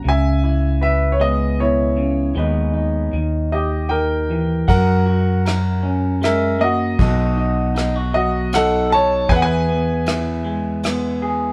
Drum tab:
RD |------|------|x-x-x-|x-x-x-|
SD |------|------|--r-r-|--r-r-|
BD |------|------|o-----|o-----|

RD |x-x-x-|
SD |--r-r-|
BD |o-----|